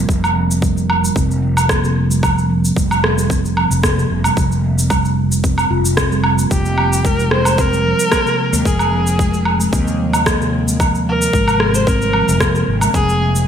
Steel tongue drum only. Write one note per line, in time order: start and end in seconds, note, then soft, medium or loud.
0.09 0.22 F3 medium
0.36 0.61 F3 medium
0.63 0.76 G3 medium
0.77 0.89 C3 medium
1.03 1.15 G3 medium
1.16 1.29 C4 medium
1.42 1.68 F3 medium
1.69 1.82 A#3 medium
1.83 1.95 C3 medium
2.10 2.22 G3 medium
2.23 2.36 F3 medium
2.50 2.75 F3 medium
2.77 2.90 G3 loud
2.90 3.03 C3 medium
3.17 3.29 G3 medium
3.30 3.44 C4 medium
3.57 3.82 F3 medium
3.98 4.10 C3 loud
4.25 4.36 G3 medium
4.38 4.51 F3 medium
4.64 4.90 F3 medium
4.91 5.04 G3 medium
5.05 5.17 C3 medium
5.31 5.43 G3 medium
5.44 5.58 C4 medium
5.71 5.84 F4 medium
5.97 6.10 C4 medium
6.12 6.19 G3 medium
6.39 6.50 A#3 medium
6.51 6.65 F3 medium
6.78 7.04 F3 medium
7.05 7.18 G#3 medium
7.19 7.31 C3 medium
7.45 7.57 G#3 medium
7.58 7.72 C4 medium
7.72 7.84 G3 medium
7.84 8.10 F3 medium
8.11 8.25 A#3 medium
8.25 8.38 C3 loud
8.52 8.64 G#3 medium
8.65 8.79 F3 medium
8.92 9.18 F3 medium
9.18 9.32 G#3 medium
9.33 9.45 C3 medium
9.60 9.71 G#3 medium
9.73 9.86 C4 medium
9.87 9.99 G3 medium
9.99 10.25 F3 medium
10.26 10.39 A#3 medium
10.41 10.53 C3 medium
10.68 10.79 G#3 medium
10.80 10.93 F3 medium
11.07 11.32 F3 medium
11.34 11.47 G#3 loud
11.48 11.60 C3 medium
11.75 11.86 G#3 medium
11.87 12.01 C4 medium
12.02 12.13 G3 medium
12.14 12.40 F3 medium
12.41 12.53 A#3 medium
12.55 12.67 C3 loud
12.82 12.93 G#3 medium
12.94 13.08 F3 medium
13.21 13.47 F3 medium